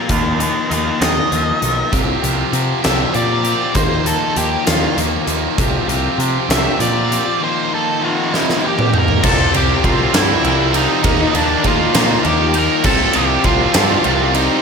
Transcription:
Already playing: overdriven electric guitar F4, lead electric guitar D5
0.08 picked electric bass D#2, overdriven electric guitar D#3 F3 A#3 D#4, clean electric guitar F4, lead electric guitar G4, kick, closed hi-hat
0.12 lead electric guitar D#5
0.38 overdriven electric guitar F3 A#3 D#4, clean electric guitar F4, lead electric guitar G4 D#5, closed hi-hat
0.71 picked electric bass D#2, overdriven electric guitar D#3 F3 A#3 D#4, clean electric guitar F4, lead electric guitar G4 D#5, closed hi-hat
1.00 picked electric bass D#2, overdriven electric guitar A#3 D#4, clean electric guitar F4, lead electric guitar D#5, snare, closed hi-hat
1.04 overdriven electric guitar F3
1.31 picked electric bass D#2, overdriven electric guitar D#3 F3 A#3 D#4, clean electric guitar F4, closed hi-hat
1.61 picked electric bass B1, overdriven electric guitar A#3 D#4, clean electric guitar F4, closed hi-hat
1.66 overdriven electric guitar F3
1.91 picked electric bass C2, overdriven electric guitar C3 F3 C4 F4 G4, kick, closed hi-hat
2.22 picked electric bass C2, overdriven electric guitar C4 F4 G4, closed hi-hat
2.52 picked electric bass C3, overdriven electric guitar F3 C4 F4 G4, closed hi-hat
2.83 picked electric bass C2, distorted electric guitar C3 F3, overdriven electric guitar C4 F4 G4, lead electric guitar E5, snare, closed hi-hat
3.13 picked electric bass A#2, overdriven electric guitar F3 C4 F4 G4, lead electric guitar D5, closed hi-hat
3.43 overdriven electric guitar C4 F4 G4, closed hi-hat
3.74 picked electric bass D#2, overdriven electric guitar D#3 F3 A#3 D#4, lead electric guitar C5, kick, closed hi-hat
4.04 overdriven electric guitar F3 A#3 D#4, lead electric guitar A4, closed hi-hat
4.35 picked electric bass D#2, overdriven electric guitar D#3 F3 A#3 D#4, lead electric guitar G4, closed hi-hat
4.66 picked electric bass D#2, distorted electric guitar D#3, overdriven electric guitar F3 A#3 D#4, lead electric guitar F4, snare, closed hi-hat
4.96 picked electric bass D#2, overdriven electric guitar D#3 F3 A#3 D#4, closed hi-hat
5.26 picked electric bass D#2, overdriven electric guitar F3 A#3 D#4, closed hi-hat
5.57 picked electric bass C2, overdriven electric guitar C3 F3 C4 F4 G4, kick, closed hi-hat
5.87 picked electric bass C2, overdriven electric guitar C4 F4 G4, closed hi-hat
6.18 picked electric bass C3, overdriven electric guitar F3 C4 F4 G4, closed hi-hat
6.48 picked electric bass C2, distorted electric guitar C3 F3, overdriven electric guitar C4 F4 G4, lead electric guitar E5, snare, closed hi-hat
6.78 picked electric bass A#2, overdriven electric guitar F3 C4 F4 G4, lead electric guitar D5, closed hi-hat
7.09 overdriven electric guitar C4 F4 G4, closed hi-hat
7.40 overdriven electric guitar D#3 F3 A#3 D#4, lead electric guitar C5
7.70 overdriven electric guitar F3 A#3 D#4
7.74 lead electric guitar A4
7.99 overdriven electric guitar D#3 F3 A#3 D#4
8.04 lead electric guitar F4 G4 F5
8.31 overdriven electric guitar F3 A#3 D#4, snare
8.35 distorted electric guitar D#3, lead electric guitar D#4
8.49 snare
8.60 overdriven electric guitar D#3 F3 A#3 D#4
8.66 lead electric guitar G4 G5
8.79 mid tom
8.91 overdriven electric guitar F3 A#3 D#4, mid tom
8.99 lead electric guitar A#4 A#5
9.08 floor tom
9.21 picked electric bass C2, overdriven electric guitar C3 F3 C4 F4 G4, distorted electric guitar G3, lead electric guitar A4 A5, kick, crash
9.51 picked electric bass C2, distorted electric guitar G3, overdriven electric guitar C4 F4 G4, ride
9.56 lead electric guitar G4 G5
9.82 picked electric bass C2, distorted electric guitar C3 G3, overdriven electric guitar F3 C4 F4 G4, lead electric guitar F4 F5, kick, ride
10.12 picked electric bass G2, distorted electric guitar C3 G3, overdriven electric guitar C4 F4 G4, lead electric guitar E4 E5, snare, ride
10.43 picked electric bass C2, distorted electric guitar C3 G3, overdriven electric guitar F3 C4 F4 G4, ride
10.73 distorted electric guitar G3, overdriven electric guitar C4 F4 G4, lead electric guitar D#4 D#5, ride
11.02 picked electric bass D#2, overdriven electric guitar D#3 F3 A#3 D#4, kick, ride
11.33 picked electric bass D#2, overdriven electric guitar F3 A#3 D#4, lead electric guitar D4 D5, ride
11.64 picked electric bass D#2, overdriven electric guitar D#3 F3 A#3 D#4, lead electric guitar F4 F5, kick, ride
11.93 picked electric bass A#2, distorted electric guitar D#3, overdriven electric guitar A#3 D#4, snare, ride
11.98 overdriven electric guitar F3
12.25 picked electric bass D#2, overdriven electric guitar D#3 F3 A#3 D#4, lead electric guitar G4 G5, ride
12.54 overdriven electric guitar F3 A#3 D#4, ride
12.58 lead electric guitar A#4 A#5
12.84 picked electric bass C2, overdriven electric guitar C3 F3 C4 F4 G4, distorted electric guitar G3, lead electric guitar A4 A5, kick, crash
13.13 picked electric bass C2, overdriven electric guitar F4 G4, lead electric guitar G4 G5, ride
13.18 overdriven electric guitar C4
13.44 picked electric bass C2, distorted electric guitar C3 G3, overdriven electric guitar F3 C4 F4, lead electric guitar F4 F5, kick, ride
13.48 overdriven electric guitar G4
13.74 picked electric bass G2, distorted electric guitar C3 G3, overdriven electric guitar C4 F4 G4, snare, ride
14.03 picked electric bass C2, distorted electric guitar C3 G3, overdriven electric guitar F3 C4 F4 G4, ride
14.34 overdriven electric guitar C4 F4 G4, lead electric guitar D#4 D#5, ride

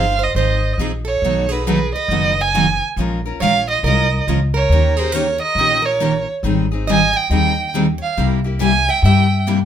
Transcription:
Already playing: upright bass G1, steel-string acoustic guitar C5, violin F5
0.19 steel-string acoustic guitar C5
0.23 violin D#5
0.35 upright bass G#1, steel-string acoustic guitar F3 C4 D#4 G#4 C5, violin D#5
0.78 upright bass A#1, steel-string acoustic guitar F3 C4 D#4 G#4
1.05 steel-string acoustic guitar A4, violin C#5
1.22 upright bass B1, steel-string acoustic guitar B2 D#3 F#3 A3 B3 D#4 F#4 A4
1.49 steel-string acoustic guitar D#4 F#4 G#4, violin B4
1.53 steel-string acoustic guitar A3
1.67 steel-string acoustic guitar B2 D#3 F#3 A3 B3 D#4 F#4 G#4 A4, violin B4
1.95 steel-string acoustic guitar B4, violin D#5
2.08 upright bass F#1, steel-string acoustic guitar B2 D#3 F#3 A3 B3 D#4 F#4 A4
2.41 steel-string acoustic guitar D#5, violin G#5
2.54 steel-string acoustic guitar B2 D#3 F#3 A3 B3 D#4 F#4 A4
2.96 upright bass A#1, steel-string acoustic guitar F3 G#3 C#4 F4
3.01 steel-string acoustic guitar A#4
3.26 steel-string acoustic guitar C#4 F4 A#4
3.40 upright bass A#1, steel-string acoustic guitar F3 G#3 C#4 F4 A#4 C#5, violin F5
3.68 steel-string acoustic guitar C5, violin D#5
3.83 upright bass C2, steel-string acoustic guitar F3 G#3 C#4 A#4, violin D#5
3.88 steel-string acoustic guitar F4 A#4
4.27 upright bass C#2, steel-string acoustic guitar F3 G#3 C#4 F4 A#4
4.54 steel-string acoustic guitar A#4, violin C#5
4.69 upright bass D#2, steel-string acoustic guitar D#3 A#3 C#4 G4
4.73 steel-string acoustic guitar A#4
4.97 steel-string acoustic guitar C#4 G4 G#4 A#4, violin C5
5.12 steel-string acoustic guitar D#3 A#3 C#4 G4 A#4, violin C#5
5.38 steel-string acoustic guitar A#4, violin D#5
5.55 upright bass A#1, steel-string acoustic guitar D#3 A#3 C#4 A#4
5.59 steel-string acoustic guitar G4
5.82 steel-string acoustic guitar A#4, violin C#5
6.00 steel-string acoustic guitar D#3 A#3 C#4 G4 A#4
6.43 upright bass G#1, steel-string acoustic guitar D#3 G3 C4 D#4 G#4
6.72 steel-string acoustic guitar C4 D#4 G#4
6.87 steel-string acoustic guitar D#3 G3 C4 D#4 G#4 D#5, violin G#5
7.13 steel-string acoustic guitar D#5, violin G5
7.30 upright bass D#2, steel-string acoustic guitar D#3 G3 C4 D#4 G#4 D#5, violin G5
7.74 steel-string acoustic guitar D#3 G3 C4 D#4 G#4
7.98 steel-string acoustic guitar C#5
8.02 violin F5
8.17 upright bass C2, steel-string acoustic guitar C3 G3 A#3 E4 G4
8.44 steel-string acoustic guitar A#3 E4 G4
8.59 steel-string acoustic guitar C3 G3 A#3 E4 G4 E5, violin G#5
8.89 steel-string acoustic guitar E5, violin G5
9.02 upright bass G2, steel-string acoustic guitar C3 G3 A#3 E4 G4 E5, violin G5
9.47 steel-string acoustic guitar C3 G3 A#3 E4 G4

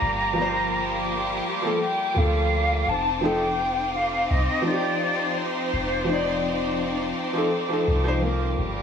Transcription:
Already playing: felt piano F3 A#3 G4, violin section G3 A#3 F4, flute A#5, synth texture D6
0.00 808-style bass G1, violin section G4
0.33 felt piano F3
0.37 felt piano A#3
0.42 felt piano C5
1.62 felt piano F3 A#3
1.67 felt piano A4
1.82 flute G5
2.14 808-style bass D2, felt piano F3 A#3, flute F5
2.18 felt piano A4
2.86 808-style bass F1, violin section C4 D#4 C5, flute A5
3.21 felt piano F3 D#4, flute G5
3.25 felt piano A4
3.95 flute F5
4.31 808-style bass C2, flute D#5
4.62 felt piano F3
4.66 felt piano D#4, flute D5
4.70 felt piano G4
5.38 flute C5
5.73 808-style bass F1
6.04 felt piano F3
6.09 felt piano D#4
6.13 felt piano D5
7.33 felt piano F3 D#4
7.38 felt piano A4
7.69 felt piano F3 D#4
7.73 felt piano A4
7.88 808-style bass C2
8.04 felt piano F3 D#4
8.08 felt piano C5
8.20 felt piano F3 A#3
8.24 felt piano A#4
8.57 808-style bass G1, violin section G3 F4 G4, synth texture D6

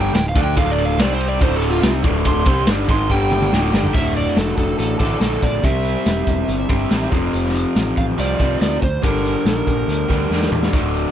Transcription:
Already playing: picked electric bass G1, overdriven electric guitar G2 D3 G3
0.01 electric slide guitar G5
0.13 picked electric bass D1, overdriven electric guitar D2 A2, electric slide guitar G5, snare, ride
0.29 electric slide guitar F5
0.35 picked electric bass D2, overdriven electric guitar D3 A3 D4, kick, ride
0.44 electric slide guitar G5
0.56 picked electric bass D1, overdriven electric guitar D2 A2 D3, electric slide guitar F5, kick, ride
0.71 electric slide guitar D5
0.78 ride
0.85 electric slide guitar F5
0.98 picked electric bass C2, overdriven electric guitar C3 G3 C4, electric slide guitar D5, snare, ride
1.14 electric slide guitar C5
1.20 ride
1.28 electric slide guitar D5
1.41 picked electric bass D1, overdriven electric guitar D2 A2 D3, electric slide guitar C5, kick, ride
1.56 electric slide guitar A4
1.62 ride
1.70 electric slide guitar F4
1.82 picked electric bass C2, overdriven electric guitar C3 G3 C4, snare, ride
2.04 picked electric bass D1, overdriven electric guitar D2 A2 D3, kick, ride
2.25 electric slide guitar C6, kick, ride
2.46 picked electric bass C2, overdriven electric guitar C3 G3 C4, kick, ride
2.67 picked electric bass G1, overdriven electric guitar G2 D3 G3, snare, ride
2.88 picked electric bass G#1, overdriven electric guitar G#2 D#3 G#3, electric slide guitar C6, kick, ride
3.09 picked electric bass G1, overdriven electric guitar G2 D3 G3, electric slide guitar G5, kick
3.31 mid tom
3.42 mid tom
3.52 picked electric bass D1, overdriven electric guitar D2 A2 D3, snare
3.73 picked electric bass G1, overdriven electric guitar G2 D3 G3, snare
3.84 floor tom
3.93 picked electric bass D1, overdriven electric guitar D2 A2 D3, electric slide guitar E5, kick, crash
4.16 electric slide guitar D5, closed hi-hat
4.36 picked electric bass F1, electric slide guitar A4, snare, closed hi-hat
4.47 snare
4.57 picked electric bass F1, electric slide guitar A4, kick, closed hi-hat
4.78 picked electric bass A1, electric slide guitar A4, closed hi-hat
4.99 picked electric bass A1, overdriven electric guitar D2 A2 D3, electric slide guitar A4, kick, closed hi-hat
5.20 picked electric bass A#1, overdriven electric guitar D2 A2 D3, electric slide guitar A4, snare, closed hi-hat
5.42 picked electric bass A#1, electric slide guitar D5, kick, closed hi-hat
5.63 picked electric bass C2, overdriven electric guitar C3 G3 C4, electric slide guitar E5, kick, closed hi-hat
5.85 closed hi-hat
6.06 picked electric bass E1, snare, closed hi-hat
6.17 snare
6.27 picked electric bass E1, kick, closed hi-hat
6.48 picked electric bass G1, closed hi-hat
6.69 picked electric bass G1, overdriven electric guitar C3 G3 C4, kick, closed hi-hat
6.91 picked electric bass A1, overdriven electric guitar C3 G3 C4, snare, closed hi-hat
7.11 picked electric bass F1, overdriven electric guitar F2 C3 F3, kick, closed hi-hat
7.33 picked electric bass F1, closed hi-hat
7.45 snare
7.55 closed hi-hat
7.76 picked electric bass A1, snare, closed hi-hat
7.87 snare
7.97 picked electric bass A1, electric slide guitar F5, kick, closed hi-hat
8.17 picked electric bass C2, overdriven electric guitar F2 C3 F3, electric slide guitar D5, closed hi-hat
8.38 picked electric bass C2, overdriven electric guitar F2 C3 F3, kick, closed hi-hat
8.61 picked electric bass D2, electric slide guitar D5, snare, closed hi-hat
8.82 picked electric bass D2, electric slide guitar C5, kick, closed hi-hat
9.02 picked electric bass G1, overdriven electric guitar G2 D3 G3, electric slide guitar A#4, kick, closed hi-hat
9.15 snare
9.25 closed hi-hat
9.45 picked electric bass A#1, electric slide guitar A#4, snare, closed hi-hat
9.67 picked electric bass A#1, kick, closed hi-hat
9.88 picked electric bass D2, closed hi-hat
10.08 picked electric bass D2, overdriven electric guitar G2 D3 G3, kick, closed hi-hat
10.30 picked electric bass E2, overdriven electric guitar G2 D3 G3, snare
10.42 snare
10.51 picked electric bass E2, mid tom
10.63 snare
10.72 picked electric bass D1, overdriven electric guitar D2 A2 D3, kick, closed hi-hat
10.95 closed hi-hat

